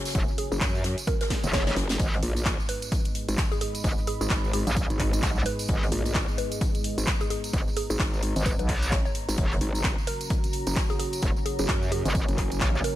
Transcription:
Already playing: analog synth pad C#4 F#4 A#4, ambient pad F#4 C#5 G#5 A#5
0.05 snare, closed hi-hat, tambourine
0.10 snare, closed hi-hat
0.15 wobble bass F#1, kick, closed hi-hat
0.28 tambourine
0.38 synth pluck G#4, closed hi-hat, open hi-hat
0.52 wobble bass F#1, synth pluck G#4, tambourine
0.61 wobble bass F#2, kick, snare, clap, closed hi-hat, tambourine
0.75 tambourine
0.84 snare, closed hi-hat, open hi-hat
0.98 closed hi-hat, tambourine
1.07 synth pluck A#4, kick, closed hi-hat, tambourine, swell
1.21 synth pluck A#4, snare, closed hi-hat, tambourine
1.30 kick, snare, closed hi-hat, open hi-hat
1.43 wobble bass F#1, closed hi-hat, tambourine
1.53 synth pluck C#5, kick, snare, clap, closed hi-hat, tambourine
1.67 synth pluck C#5, snare, closed hi-hat, tambourine
1.76 wobble bass F#1, snare, closed hi-hat, open hi-hat
1.89 snare, closed hi-hat, open hi-hat, tambourine
1.99 wobble bass G#1, analog synth pad G#3 G#4 B4 D#5, ambient pad G#4, kick, closed hi-hat, tambourine
2.13 snare, tambourine
2.23 wobble bass A#1, closed hi-hat, open hi-hat
2.36 closed hi-hat, tambourine
2.43 ambient pad D#5, kick, snare, clap, closed hi-hat, tambourine
2.60 tambourine
2.69 synth pluck B4, closed hi-hat, open hi-hat
2.82 closed hi-hat, tambourine
2.87 ambient pad B5
2.92 kick, closed hi-hat, tambourine
3.05 closed hi-hat, tambourine
3.15 closed hi-hat, open hi-hat
3.28 wobble bass G#1, closed hi-hat, tambourine
3.38 kick, snare, clap, closed hi-hat, tambourine
3.51 synth pluck G#4, closed hi-hat, tambourine
3.61 synth pluck G#4, closed hi-hat, open hi-hat
3.75 closed hi-hat, tambourine
3.84 wobble bass G#1, kick, closed hi-hat, tambourine
3.98 tambourine
4.07 synth pluck G#4, closed hi-hat, open hi-hat
4.21 wobble bass G#1, synth pluck G#4, tambourine
4.30 wobble bass G#1, kick, snare, clap, closed hi-hat, tambourine
4.44 tambourine
4.53 synth pluck G#4, closed hi-hat, open hi-hat
4.67 wobble bass A#1, closed hi-hat, tambourine
4.77 kick, closed hi-hat, tambourine
4.90 wobble bass G#1, closed hi-hat, tambourine
4.99 kick, clap, closed hi-hat, open hi-hat
5.13 closed hi-hat, tambourine
5.22 wobble bass B1, kick, snare, clap, closed hi-hat, tambourine
5.35 tambourine
5.46 synth pluck B4, closed hi-hat, open hi-hat
5.59 closed hi-hat, open hi-hat, tambourine
5.68 wobble bass G#1, kick, closed hi-hat, tambourine
5.82 snare, tambourine
5.91 wobble bass A#1, closed hi-hat, open hi-hat
6.05 closed hi-hat, tambourine
6.14 kick, snare, clap, closed hi-hat, tambourine
6.28 tambourine
6.38 synth pluck B4, ambient pad A#5, closed hi-hat, open hi-hat
6.52 closed hi-hat, tambourine
6.61 kick, closed hi-hat, tambourine
6.75 closed hi-hat, tambourine
6.84 closed hi-hat, open hi-hat
6.98 wobble bass G#1, closed hi-hat, tambourine
7.07 kick, snare, clap, closed hi-hat, tambourine
7.21 synth pluck G#4, closed hi-hat, tambourine
7.30 synth pluck G#4, closed hi-hat, open hi-hat
7.44 closed hi-hat, tambourine
7.53 wobble bass G#1, kick, closed hi-hat, tambourine
7.68 tambourine
7.77 synth pluck G#4, closed hi-hat, open hi-hat
7.90 wobble bass G#1, synth pluck G#4, tambourine
7.99 wobble bass G#1, kick, snare, clap, closed hi-hat, tambourine
8.13 tambourine
8.22 closed hi-hat, open hi-hat
8.36 wobble bass G#1, closed hi-hat, tambourine
8.46 synth pluck B4, kick, closed hi-hat, tambourine
8.59 wobble bass B1, synth pluck B4, closed hi-hat, tambourine
8.68 kick, clap, closed hi-hat, open hi-hat
8.82 closed hi-hat, tambourine
8.92 synth pluck C#5, kick, snare, clap, closed hi-hat, tambourine
9.05 synth pluck C#5, tambourine
9.15 closed hi-hat, open hi-hat
9.29 wobble bass G#1, closed hi-hat, open hi-hat, tambourine
9.37 wobble bass F#1, analog synth pad C#4 F#4 A#4, ambient pad F#4, kick, closed hi-hat, tambourine
9.51 ambient pad C#5, snare, tambourine
9.61 wobble bass G#1, closed hi-hat, open hi-hat
9.75 closed hi-hat, tambourine
9.84 kick, snare, clap, closed hi-hat, tambourine
9.98 tambourine
10.07 synth pluck A#4, closed hi-hat, open hi-hat
10.21 closed hi-hat, tambourine
10.30 kick, closed hi-hat, tambourine
10.44 ambient pad G#5, closed hi-hat, tambourine
10.53 closed hi-hat, open hi-hat
10.67 wobble bass F#1, closed hi-hat, tambourine
10.76 kick, snare, clap, closed hi-hat, tambourine
10.90 synth pluck G#4, closed hi-hat, tambourine
10.99 synth pluck G#4, closed hi-hat, open hi-hat
11.13 closed hi-hat, tambourine
11.22 wobble bass F#1, kick, closed hi-hat, tambourine
11.36 tambourine
11.46 synth pluck G#4, closed hi-hat, open hi-hat
11.59 wobble bass F#1, synth pluck G#4, tambourine
11.68 wobble bass F#2, kick, snare, clap, closed hi-hat
11.82 tambourine
11.92 synth pluck G#4, closed hi-hat, open hi-hat
12.05 wobble bass G#1, closed hi-hat, tambourine
12.15 kick, closed hi-hat, tambourine
12.28 wobble bass F#1, closed hi-hat, tambourine
12.38 kick, clap, closed hi-hat, open hi-hat
12.51 closed hi-hat, tambourine
12.60 wobble bass A#1, kick, snare, clap, closed hi-hat, tambourine
12.75 tambourine
12.84 synth pluck A#4, closed hi-hat, open hi-hat

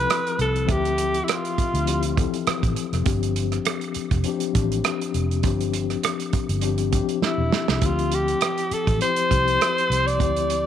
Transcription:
Already playing: tine electric piano F3 C4 E4 G4 A4, alto saxophone B4
0.10 cross-stick, closed hi-hat
0.27 closed hi-hat
0.39 fingered electric bass C2, alto saxophone A4, closed hi-hat
0.56 closed hi-hat
0.65 fingered electric bass D2, tine electric piano F3 C4 E5, kick, closed hi-hat
0.70 tine electric piano G4, alto saxophone G4
0.85 closed hi-hat
0.98 closed hi-hat
1.14 closed hi-hat
1.24 alto saxophone E4
1.28 alto saxophone F4, cross-stick, closed hi-hat
1.45 closed hi-hat
1.58 muted fingered electric bass stroke, kick, closed hi-hat
1.74 fingered electric bass D2, closed hi-hat
1.85 tine electric piano F3 C4 E4 G4, closed hi-hat
2.03 closed hi-hat
2.15 tine electric piano E3 C4 E4 A4, kick, closed hi-hat
2.22 tine electric piano F3
2.34 closed hi-hat
2.47 muted fingered electric bass stroke, cross-stick, closed hi-hat
2.63 fingered electric bass A1, kick, closed hi-hat
2.76 closed hi-hat
2.93 fingered electric bass F1, cross-stick, closed hi-hat
3.04 fingered electric bass G1, tine electric piano F3 C4 D4 G4, kick, closed hi-hat
3.23 closed hi-hat
3.36 closed hi-hat
3.52 cross-stick, closed hi-hat
3.65 cross-stick, closed hi-hat
3.81 closed hi-hat
3.94 muted fingered electric bass stroke, closed hi-hat
4.11 fingered electric bass F1, kick, closed hi-hat
4.23 tine electric piano F3 C4 D4, closed hi-hat
4.28 tine electric piano G4
4.40 closed hi-hat
4.53 fingered electric bass A1, tine electric piano F3 C4 D4, kick, closed hi-hat
4.57 tine electric piano G4
4.72 closed hi-hat
4.84 cross-stick, closed hi-hat
5.02 closed hi-hat
5.14 fingered electric bass F1, closed hi-hat
5.31 closed hi-hat
5.43 fingered electric bass G1, tine electric piano F3 C4 D4 G4, kick, closed hi-hat
5.61 closed hi-hat
5.74 closed hi-hat
5.90 cross-stick, closed hi-hat
6.03 cross-stick, closed hi-hat
6.20 closed hi-hat
6.33 muted fingered electric bass stroke, kick, closed hi-hat
6.49 fingered electric bass G1, closed hi-hat
6.61 tine electric piano F3 C4 D4, closed hi-hat
6.65 tine electric piano G4
6.78 closed hi-hat
6.91 tine electric piano F3 C4 D4 G4, kick, closed hi-hat
7.09 closed hi-hat
7.22 muted fingered electric bass stroke, snare
7.26 alto saxophone E4
7.38 fingered electric bass E1
7.53 snare
7.68 fingered electric bass C2, snare
7.81 fingered electric bass D2, tine electric piano F3 C4 E4 G4, kick, closed hi-hat
7.86 alto saxophone F4
7.99 closed hi-hat
8.12 alto saxophone G4, closed hi-hat
8.28 closed hi-hat
8.41 cross-stick, closed hi-hat
8.58 closed hi-hat
8.71 alto saxophone A4, muted fingered electric bass stroke, closed hi-hat
8.87 fingered electric bass A1, kick, closed hi-hat
8.99 tine electric piano F3 C4 E4 G4, alto saxophone C5, closed hi-hat
9.16 closed hi-hat
9.29 fingered electric bass C2, tine electric piano F3 C4 E4 G4, kick, closed hi-hat
9.48 closed hi-hat
9.61 cross-stick, closed hi-hat
9.78 closed hi-hat
9.90 fingered electric bass C2, closed hi-hat
10.07 alto saxophone D5, closed hi-hat
10.18 fingered electric bass D2, tine electric piano F3 C4 E4 G4, kick, closed hi-hat
10.36 closed hi-hat
10.50 closed hi-hat

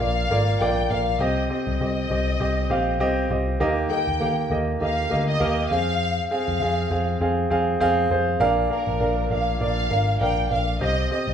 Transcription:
Already playing: grand piano A#2
0.00 picked electric bass A#1, grand piano A#3 F4 D5, violin section F5
0.30 picked electric bass G#1, grand piano A#3 F4 D5
0.60 picked electric bass A#1, grand piano A#3 F4 D5, violin section G5
0.90 picked electric bass A#1, grand piano A#3 F4 D5, violin section F5
1.20 picked electric bass C2, grand piano C3 C4 G4 D#5, violin section D#5
1.50 grand piano C4 G4 D#5, violin section D#5
1.67 picked electric bass C2
1.80 picked electric bass C2, grand piano C4 G4 D#5
2.10 picked electric bass C2, grand piano C4 G4 D#5
2.40 picked electric bass C2, grand piano C4 G4 D#5
2.70 picked electric bass A#1, grand piano C4 G4 F5
3.00 picked electric bass C2, grand piano C4 G4 D#5
3.30 picked electric bass C2, grand piano C4 G4 D#5
3.60 picked electric bass D#2, grand piano D#3 A#3 G4 D#5
3.90 grand piano A#3 G4 D#5, violin section G5
4.07 picked electric bass D#2
4.20 picked electric bass D#2, grand piano A#3 G4 F5
4.50 picked electric bass D#2, grand piano A#3 G4 D#5
4.81 picked electric bass D#2, grand piano A#3 G4 D#5, violin section F5
5.10 picked electric bass D2, grand piano A#3 G4 D#5
5.29 violin section D#5
5.40 picked electric bass D#2, grand piano A#3 G4 A#4
5.71 picked electric bass F2, grand piano C4 G#4 F5, violin section F5
6.31 grand piano C4 G#4 F5, violin section F5
6.48 picked electric bass F2
6.60 picked electric bass F2, grand piano C4 G#4 F5
6.91 picked electric bass F2, grand piano C4 G#4 F5
7.21 picked electric bass F2, grand piano C4 G#4 F5
7.50 picked electric bass F2, grand piano C4 G#4 F5
7.80 picked electric bass F2, grand piano C4 G#4 F5
8.10 picked electric bass F2, grand piano C4 G#4 C5
8.40 picked electric bass A#1, grand piano A#2 D4 A#4 F5
8.70 grand piano D4 A#4 F5, violin section A#4
8.87 picked electric bass A#1
9.00 picked electric bass A#1, grand piano D4 A#4 F5
9.30 picked electric bass A#1, grand piano D4 A#4 F5, violin section F5
9.60 picked electric bass A#1, grand piano D4 A#4 D5, violin section F5
9.90 picked electric bass G#1, grand piano D4 A#4 F5
10.20 picked electric bass A#1, grand piano D4 A#4 F5, violin section G5
10.50 picked electric bass A#1, grand piano D4 A#4 F5, violin section F5
10.81 picked electric bass C2, grand piano C3 C4 G4 D#5, violin section D#5
11.11 grand piano C4 G4 D#5, violin section D#5
11.28 picked electric bass C2

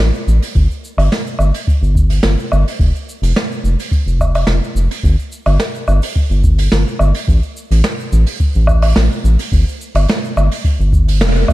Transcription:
0.00 analog synth bass A1, shaker
0.14 shaker
0.27 analog synth bass A1, shaker
0.42 open hi-hat, shaker
0.55 analog synth bass G1, kick, open hi-hat, shaker
0.71 shaker
0.84 shaker
0.98 analog synth bass G1, open hi-hat, low woodblock, shaker
1.12 snare, open hi-hat, shaker
1.27 shaker
1.39 analog synth bass G1, low woodblock, shaker
1.54 open hi-hat, shaker
1.67 kick, open hi-hat, shaker
1.82 analog synth bass G1, shaker
1.95 kick, shaker
2.10 open hi-hat, shaker
2.23 analog synth bass G1, snare, open hi-hat, shaker
2.39 shaker
2.52 analog synth bass G1, low woodblock, shaker
2.68 open hi-hat, shaker
2.79 analog synth bass F1, kick, open hi-hat, shaker
2.95 shaker
3.09 shaker
3.22 analog synth bass F1, open hi-hat, shaker
3.36 snare, shaker
3.52 shaker
3.64 analog synth bass F1, shaker
3.79 open hi-hat, shaker
3.91 kick, open hi-hat, shaker
4.06 analog synth bass F1, shaker
4.20 kick, low woodblock, shaker
4.35 open hi-hat, low woodblock, shaker
4.47 analog synth bass F1, snare, shaker
4.64 shaker
4.75 analog synth bass F1, shaker
4.91 open hi-hat, shaker
5.03 analog synth bass G1, kick, open hi-hat, shaker
5.19 shaker
5.32 shaker
5.46 analog synth bass G1, open hi-hat, low woodblock, shaker
5.59 snare, open hi-hat, shaker
5.75 shaker
5.88 analog synth bass G1, low woodblock, shaker
6.02 open hi-hat, shaker
6.15 kick, open hi-hat, shaker
6.30 analog synth bass G1, shaker
6.44 kick, shaker
6.58 open hi-hat, shaker
6.72 analog synth bass G1, snare, open hi-hat, shaker
6.88 shaker
6.99 analog synth bass G1, low woodblock, shaker
7.14 open hi-hat, shaker
7.28 analog synth bass A1, kick, open hi-hat, shaker
7.43 shaker
7.57 shaker
7.71 analog synth bass A1, open hi-hat, shaker
7.84 snare, open hi-hat, shaker
8.00 shaker
8.12 analog synth bass A1, shaker
8.26 open hi-hat, shaker
8.40 kick, open hi-hat, shaker
8.54 analog synth bass A1, shaker
8.67 kick, low woodblock, shaker
8.82 open hi-hat, low woodblock, shaker
8.96 analog synth bass A1, snare, open hi-hat, shaker
9.12 shaker
9.24 analog synth bass A1, shaker
9.39 open hi-hat, shaker
9.52 analog synth bass G1, kick, open hi-hat, shaker
9.68 shaker
9.81 shaker
9.95 analog synth bass G1, open hi-hat, low woodblock, shaker
10.08 snare, open hi-hat, shaker
10.24 shaker
10.37 analog synth bass G1, low woodblock, shaker
10.51 open hi-hat, shaker
10.64 kick, open hi-hat, shaker
10.80 analog synth bass G1, shaker
10.93 kick, shaker
11.08 open hi-hat, shaker
11.21 analog synth bass F1, snare, open hi-hat, shaker
11.35 shaker
11.48 analog synth bass D2, kick, low woodblock, shaker

